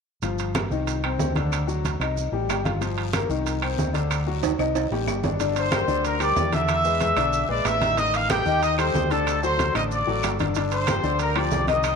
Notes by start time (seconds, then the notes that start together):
0.22 G1 F3 F4, high conga, high timbale, maracas
0.39 high conga, high timbale, maracas
0.55 A#3 A#4, high conga, high timbale, low timbale, claves, maracas
0.70 C2 D#3 D#4, high conga, maracas
0.87 high conga, high timbale, maracas
1.04 C4 C5, high conga, high timbale, claves
1.18 D2, high conga, low timbale, maracas
1.36 D3 D4, high conga, high timbale, maracas
1.52 high conga, high timbale, claves, maracas
1.67 F#3 F#4, high conga, maracas
1.85 high conga, high timbale, low timbale, maracas
1.99 C2 D#4 D#5, high conga, high timbale, claves, maracas
2.17 high conga, maracas
2.32 A1 G3 G4, high conga
2.48 G1, high conga, high timbale, low timbale, claves, maracas
2.65 F4 F5, high conga, high timbale, maracas
2.81 F3 F4, high conga, high timbale, long guiro, maracas
2.98 high conga, high timbale
3.13 A#3 A#4, high conga, high timbale, low timbale, short guiro, claves, maracas
3.29 C2 D#3 D#4, high conga, short guiro, maracas
3.46 high conga, high timbale, long guiro, maracas
3.62 C4 C5, high conga, high timbale, claves
3.78 D2, high conga, low timbale, short guiro, maracas
3.93 D3 D4, high timbale, short guiro, maracas
4.11 high conga, high timbale, long guiro, claves, maracas
4.27 F#3 F#4, high conga
4.43 high conga, high timbale, short guiro, maracas
4.58 C2 D#4 D#5, high conga, high timbale, short guiro, claves, maracas
4.75 high conga, high timbale, long guiro, maracas
4.90 A1 G3 G4, high conga, low timbale
5.07 G1, high conga, low timbale, short guiro, claves, maracas
5.23 D4 D5, high conga, low timbale, short guiro, maracas
5.40 D3 D4 D5, high conga, high timbale, long guiro, maracas
5.56 C5 C6, high conga, high timbale, maracas
5.71 G3 G4 A#4, high conga, high timbale, low timbale, short guiro, claves, maracas
5.87 D2 D3 D4 D5, high conga, short guiro, maracas
6.04 A#4 A#5, high conga, high timbale, long guiro, maracas
6.20 G3 G4 A#4 D5 D6, high conga, high timbale, claves, maracas
6.36 E2, high conga, low timbale, short guiro, maracas
6.52 D3 D4 D5 E5 E6, high conga, high timbale, short guiro, maracas
6.68 high conga, high timbale, long guiro, claves, maracas
6.84 G#3 G#4 B4, high conga, maracas
7.00 G#3 G#4 B4, high conga, high timbale, low timbale, short guiro, maracas
7.16 B1 D3 D4 D5, high conga, high timbale, short guiro, claves, maracas
7.33 high conga, long guiro, maracas
7.48 A#1 G#3 G#4 B4 D5 D6, high conga
7.65 A1 E5 E6, high conga, high timbale, low timbale, short guiro, claves, maracas
7.80 D#3 D#4 D#5, high conga, high timbale, short guiro, maracas
7.97 D#3 D#4 D#5 D#6, high conga, high timbale, long guiro, maracas
8.14 F5, high conga, high timbale, maracas
8.29 G3 G4 A4 G5, high conga, high timbale, low timbale, short guiro, claves, maracas
8.45 D#2 D#3 D#4 D#5, high conga, short guiro, maracas
8.62 D#5 D#6, high conga, high timbale, long guiro, maracas
8.78 G3 G4 A4 C5 C6, high conga, high timbale, claves, maracas
8.94 D2, high conga, low timbale, short guiro, maracas
9.11 D3 D4 A4 D5 A5, high timbale, short guiro, maracas
9.27 high conga, high timbale, long guiro, claves, maracas
9.43 F#3 F#4 A4 C5 C6, high conga, maracas
9.58 F#3 F#4 A4, high conga, high timbale, low timbale, short guiro, maracas
9.74 A1 D3 D4 D5 D#5 D#6, high conga, high timbale, short guiro, claves, maracas
9.91 D5 D6, high conga, long guiro, maracas
10.07 A1 F#3 F#4 A4, high conga
10.23 G1, high conga, high timbale, low timbale, short guiro, claves, maracas
10.39 D3 D4 D5, high conga, high timbale, short guiro, maracas
10.55 D3 D4 D5, high conga, high timbale, long guiro, maracas
10.71 C5 C6, high conga, high timbale, maracas
10.87 F3 F4 G4, high conga, high timbale, low timbale, short guiro, claves, maracas
11.03 D2 D3 D4 D5, high conga, short guiro, maracas
11.19 A#4 A#5, high conga, high timbale, long guiro, maracas
11.36 F3 F4 G4 D5 D6, high conga, high timbale, claves
11.51 C2, high conga, low timbale, short guiro, maracas
11.67 D#3 D#4 D#5 D#6, high conga, high timbale, short guiro, maracas
11.83 high conga, high timbale, long guiro, claves, maracas